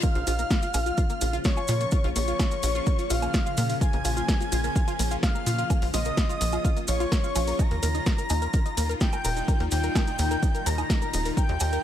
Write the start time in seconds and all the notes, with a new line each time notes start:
0.03 C#3 F3 A#3 C#4 F4 A#4 F5 F6, kick, closed hi-hat, maracas
0.15 A#1 F4 F5, closed hi-hat
0.27 A#1 F4 F5, open hi-hat, maracas
0.39 A#3 A#4, closed hi-hat, maracas
0.50 F4 F5, kick, snare, closed hi-hat, maracas
0.62 F4 F5, closed hi-hat, maracas
0.74 A#1 A#3 A#4, open hi-hat, low woodblock, maracas
0.86 F4 F5, closed hi-hat, maracas
0.97 F4 F5, kick, closed hi-hat, maracas
1.10 A#3 A#4, closed hi-hat, maracas
1.21 A#1 F4 F5, open hi-hat, maracas
1.33 F4 F5, closed hi-hat, maracas
1.44 A#3 A#4 C#5 C#6, kick, snare, closed hi-hat, maracas
1.57 F4 F5, low woodblock, maracas
1.68 A#2 F4 F5, open hi-hat, maracas
1.81 A#3 A#4, closed hi-hat, maracas
1.91 F4 F5, kick, closed hi-hat, maracas
2.04 A#1 F4 F5, closed hi-hat
2.16 A#1 A#3 A#4 C#5 C#6, open hi-hat, maracas
2.28 F4 F5, closed hi-hat, maracas
2.39 F4 F5, kick, snare, closed hi-hat, low woodblock, maracas
2.51 A#3 A#4, closed hi-hat, maracas
2.63 A#1 F4 F5, open hi-hat, maracas
2.75 F4 F5, closed hi-hat, maracas
2.86 A#3 A#4, kick, closed hi-hat, maracas
2.99 F4 F5, closed hi-hat, maracas
3.10 A#1 F4 F5 F6, open hi-hat, maracas
3.22 A#3 A#4, closed hi-hat, low woodblock, maracas
3.34 F4 F5, kick, snare, closed hi-hat, maracas
3.46 F4 F5, maracas
3.57 A#2 A#3 A#4, open hi-hat, maracas
3.69 F4 F5, open hi-hat, maracas
3.81 F4 F5 G#5 G#6, kick, closed hi-hat, maracas
3.93 A#1 A#3 A#4, closed hi-hat
4.05 A#1 F4 F5, open hi-hat, low woodblock, maracas
4.17 F4 F5, closed hi-hat, maracas
4.28 A#3 A#4, kick, snare, closed hi-hat, maracas
4.40 F4 F5, closed hi-hat, maracas
4.52 A#1 F4 F5, open hi-hat, maracas
4.64 A#3 A#4, closed hi-hat, maracas
4.76 F4 F5, kick, closed hi-hat, maracas
4.88 F4 F5, closed hi-hat, low woodblock, maracas
4.99 A#1 A#3 A#4, open hi-hat, maracas
5.11 F4 F5, closed hi-hat, maracas
5.23 F4 F5 F6, kick, snare, closed hi-hat, maracas
5.35 A#3 A#4, maracas
5.46 A#2 F4 F5, open hi-hat, maracas
5.58 F4 F5, closed hi-hat, maracas
5.70 A#3 A#4, kick, closed hi-hat, low woodblock, maracas
5.82 A#1 F4 F5, open hi-hat
5.94 A#1 F4 D#5 F5 D#6, snare, open hi-hat, maracas
6.05 A#3 A#4, closed hi-hat, maracas
6.17 F4 F5, kick, snare, closed hi-hat, maracas
6.29 F4 F5, closed hi-hat, maracas
6.41 A#1 A#3 A#4, open hi-hat, maracas
6.52 F4 F5, closed hi-hat, low woodblock, maracas
6.65 F4 F5, kick, closed hi-hat, maracas
6.77 A#3 A#4, closed hi-hat, maracas
6.88 A#1 F4 C#5 F5 C#6, open hi-hat, maracas
7.00 F4 F5, closed hi-hat, maracas
7.12 A#3 A#4, kick, snare, closed hi-hat, maracas
7.24 F4 F5, maracas
7.35 A#1 F4 F5, open hi-hat, low woodblock, maracas
7.47 A#3 A#4, open hi-hat, maracas
7.59 A#2 D#3 G3 D#4 D#5 A#5 A#6, kick, closed hi-hat, maracas
7.71 D#2 A#4 A#5, closed hi-hat
7.83 D#2 A#4 A#5, open hi-hat, maracas
7.95 D#4 D#5, closed hi-hat, maracas
8.06 A#4 A#5, kick, snare, closed hi-hat, maracas
8.18 A#4 A#5, closed hi-hat, maracas
8.29 D#2 D#4 D#5, open hi-hat, low woodblock, maracas
8.42 A#4 A#5, closed hi-hat, maracas
8.53 A#4 A#5, kick, closed hi-hat, maracas
8.66 D#4 D#5, closed hi-hat, maracas
8.77 D#2 A#4 A#5, open hi-hat, maracas
8.89 A#4 A#5, closed hi-hat, maracas
9.01 D#4 D#5 G5 G6, kick, snare, closed hi-hat, maracas
9.13 A#4 A#5, low woodblock, maracas
9.24 D#1 A#4 A#5, open hi-hat, maracas
9.36 D#4 D#5, closed hi-hat, maracas
9.48 A#4 A#5, kick, closed hi-hat, maracas
9.60 D#2 A#4 A#5, closed hi-hat
9.71 D#2 D#4 D#5 G5 G6, open hi-hat, maracas
9.83 A#4 A#5, closed hi-hat, maracas
9.95 A#4 A#5, kick, snare, closed hi-hat, low woodblock, maracas
10.07 D#4 D#5, closed hi-hat, maracas
10.18 D#2 A#4 A#5, open hi-hat, maracas
10.31 A#4 A#5, closed hi-hat, maracas
10.43 D#4 D#5, kick, closed hi-hat, maracas
10.55 A#4 A#5, closed hi-hat, maracas
10.66 D#2 A#4 A#5 A#6, open hi-hat, maracas
10.78 D#4 D#5, closed hi-hat, low woodblock, maracas
10.90 A#4 A#5, kick, snare, closed hi-hat, maracas
11.02 A#4 A#5, maracas
11.13 D#1 D#4 D#5, open hi-hat, maracas
11.25 A#4 A#5, open hi-hat, maracas
11.37 A#4 G5 A#5 G6, kick, closed hi-hat, maracas
11.49 D#2 D#4 D#5, closed hi-hat
11.60 D#2 A#4 A#5, open hi-hat, low woodblock, maracas
11.72 A#4 A#5, closed hi-hat, maracas